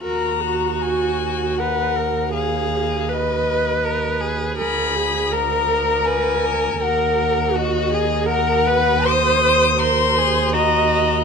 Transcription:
0.01 D#2 F#4 A#4
0.05 A#5
0.41 F#4
0.81 G#5
1.58 A#4 B4 F#5
1.95 A#4
2.33 G#4 F5
3.09 B4 D#5
3.84 A#4
4.21 G#4
4.58 D2 G#4 A#4 B5
4.95 G#4
5.31 A#4 A#5
6.05 B4 G#5
6.45 A#4
6.79 D#2 A#4 F#5
7.54 F#4 D#5
7.90 G#4
7.94 G#4
8.26 A#4 F#5
8.67 B4
9.05 C5 D#6
9.44 C5
9.78 A#4 C5 C6
10.19 G#4
10.54 F#4 D#5 A#5

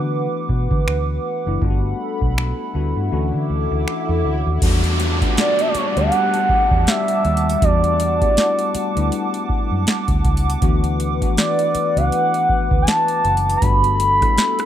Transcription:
Already playing: D3 E3 A3 B3 D4 F#4 B4 F#5 D6
0.49 B2, kick
0.71 D3, kick
0.87 D2, finger snap
1.46 F#1 E3 A3 B3 D4 E4
1.61 G1 G3 A3 B3 D4 F4 A4 B5, kick, swell
1.70 F#4
2.22 B1, kick
2.38 finger snap
2.73 D2 G3 A3 B3 D4 F#4
2.96 G2
3.11 D2 E3 A3 C#4 D4 F#4 A4 D6
3.34 D3
3.50 D2
3.72 D2
3.88 finger snap
4.09 E2 A4 C#5
4.25 D2 F#4 A4
4.47 D#2 D4 F#4
4.61 E2 G3 A3 B3 D4 F#4 F#5 A5 D6, kick, closed hi-hat, crash, downlifter
4.84 closed hi-hat
5.00 closed hi-hat
5.20 G3 A3 B3 D4 F4, kick, closed hi-hat
5.29 F#4
5.37 D5, snare, closed hi-hat
5.59 E5, closed hi-hat
5.68 D5
5.75 C#5, muted fingered electric bass stroke, closed hi-hat
5.87 D5
5.96 D2 G3 A3 B3 D4 G4 F#5, closed hi-hat
6.12 closed hi-hat
6.34 closed hi-hat
6.49 muted fingered electric bass stroke, kick
6.71 E2, kick
6.87 E5, snare, closed hi-hat
7.08 closed hi-hat
7.25 D#2, closed hi-hat
7.37 closed hi-hat
7.50 closed hi-hat
7.61 E2 G3 A3 B3 D4 F#4 D5, kick, closed hi-hat
7.84 closed hi-hat
8.00 closed hi-hat
8.21 G3 A3 B3 D4 E4, kick, closed hi-hat
8.29 F#4
8.37 snare, closed hi-hat
8.59 closed hi-hat
8.75 muted fingered electric bass stroke, closed hi-hat
8.95 D2 G3 A3 B3 D4 E4, closed hi-hat
9.12 closed hi-hat
9.34 closed hi-hat
9.49 muted fingered electric bass stroke, kick
9.72 F#2
9.87 snare, closed hi-hat
10.08 D2, kick, closed hi-hat
10.25 C#2, kick, closed hi-hat
10.37 closed hi-hat
10.50 closed hi-hat
10.61 D2 E3 A3 B3 D4 F#4 B4, kick, closed hi-hat
10.84 closed hi-hat
11.00 closed hi-hat
11.21 E3 A3 B3 D4 F#4, kick, closed hi-hat
11.37 D5, snare, closed hi-hat
11.59 closed hi-hat
11.75 muted fingered electric bass stroke, closed hi-hat
11.96 C#2 E3 A3 B3 D4 F#4 F#5, closed hi-hat
12.12 closed hi-hat
12.34 closed hi-hat
12.49 muted fingered electric bass stroke, kick
12.71 D2, kick
12.82 G#5
12.87 A5, snare, closed hi-hat
13.08 closed hi-hat
13.25 F#1, closed hi-hat
13.37 closed hi-hat
13.50 closed hi-hat
13.57 A#5
13.61 G1 G3 A3 B3 D4 F#4 A4 B5, kick, closed hi-hat
13.84 closed hi-hat
14.00 closed hi-hat
14.21 G3 A3 B3 D4 E4, kick, cross-stick, closed hi-hat
14.38 snare, closed hi-hat
14.59 cross-stick, closed hi-hat

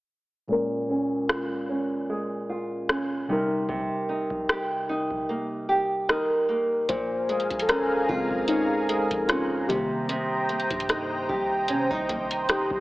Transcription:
0.47 A#2 G#3 C#4
0.52 A#4
0.89 C#4
1.29 F4, cross-stick
1.69 C#4
2.09 G#3
2.49 F4
2.89 C#4, cross-stick
3.28 C3 G3 D#4
3.32 A#4
3.69 C3, kick
4.09 D#4
4.30 kick
4.49 G4, cross-stick
4.89 D#4
5.11 kick
5.29 A#3
5.69 G4
6.09 D#4 A#4, cross-stick
6.49 A#3
6.89 A#1 A#2 G#4 C5 F5 G#5 A#5, kick, closed hi-hat
7.29 G#3, closed hi-hat
7.40 closed hi-hat
7.50 A#1, kick, closed hi-hat
7.59 A4, closed hi-hat
7.68 C#4 A#4, cross-stick, closed hi-hat
8.09 C#2 C#3 G#3 C4 F4, kick
8.31 kick
8.48 C#4 D#4, closed hi-hat
8.89 G#3, closed hi-hat
9.11 A#1, kick, closed hi-hat
9.28 C#4 F4, cross-stick, closed hi-hat
9.68 C3 D#3 G3 A#3 G4 C5 G5 A#5 D#6, kick, closed hi-hat
10.09 C3, closed hi-hat
10.49 A#3, closed hi-hat
10.60 closed hi-hat
10.70 G2, kick, closed hi-hat
10.80 closed hi-hat
10.89 D#4, cross-stick, closed hi-hat
11.29 C2 G4, kick
11.68 C3 C#4, closed hi-hat
11.91 C2 D#4, kick
12.09 A#3, kick, closed hi-hat
12.31 closed hi-hat
12.49 D#4 G4, cross-stick, closed hi-hat
12.71 C2, kick

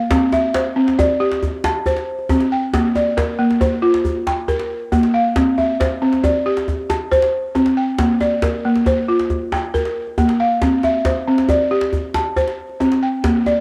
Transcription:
Already playing: A#3 F5
0.11 C4, djembe slap, djembe bass
0.32 E5, djembe tone
0.54 C5, djembe slap
0.66 djembe slap
0.76 C4
0.88 djembe slap
0.99 D5, djembe slap, djembe tone, djembe bass
1.20 G4
1.32 djembe slap
1.43 djembe slap, djembe bass
1.64 A5, djembe slap, djembe tone
1.75 djembe slap
1.86 C5, djembe bass
1.96 djembe slap
2.19 djembe slap
2.29 C4, djembe tone, djembe bass
2.40 djembe slap
2.52 G5
2.73 A#3, djembe slap, djembe bass
2.85 djembe slap
2.95 D5, djembe tone
3.07 djembe slap
3.17 A#4, djembe slap, djembe bass
3.39 A#3
3.51 djembe slap
3.61 C5, djembe slap, djembe tone, djembe bass
3.72 djembe slap
3.82 F4
3.94 djembe slap
4.05 djembe bass
4.16 djembe slap
4.27 G5, djembe slap, djembe tone
4.37 djembe slap
4.48 A#4, djembe bass
4.60 djembe slap
4.92 A#3, djembe tone, djembe bass
5.03 djembe slap
5.14 F5
5.36 C4, djembe slap, djembe bass
5.58 E5, djembe tone
5.80 C5, djembe slap, djembe bass
5.91 djembe slap
6.02 C4
6.13 djembe slap
6.24 D5, djembe slap, djembe tone, djembe bass
6.46 G4
6.57 djembe slap
6.68 djembe slap, djembe bass
6.90 A5, djembe slap, djembe tone
7.01 djembe slap
7.12 C5, djembe bass
7.22 djembe slap
7.55 C4, djembe slap, djembe tone
7.66 djembe slap
7.77 G5
7.98 A#3, djembe slap, djembe bass
8.21 D5, djembe tone
8.42 A#4, djembe slap, djembe bass
8.53 djembe slap
8.65 A#3
8.76 djembe slap
8.86 C5, djembe slap, djembe tone, djembe bass
9.08 F4
9.19 djembe slap
9.30 djembe slap, djembe bass
9.52 G5, djembe slap, djembe tone
9.64 djembe slap
9.74 A#4, djembe bass
9.85 djembe slap
10.07 djembe slap
10.18 A#3, djembe slap, djembe tone, djembe bass
10.29 djembe slap
10.40 F5
10.62 C4, djembe slap, djembe bass
10.83 E5, djembe tone
11.05 C5, djembe slap, djembe bass
11.17 djembe slap
11.27 C4
11.38 djembe slap
11.49 D5, djembe slap, djembe tone, djembe bass
11.71 G4
11.81 djembe slap
11.93 djembe slap, djembe bass
12.14 A5, djembe slap, djembe tone
12.26 djembe slap
12.36 C5, djembe bass
12.47 djembe slap
12.69 djembe slap
12.80 C4, djembe slap, djembe tone
12.92 djembe slap
13.03 G5
13.24 A#3, djembe slap, djembe bass
13.46 D5, djembe slap, djembe tone
13.57 djembe slap

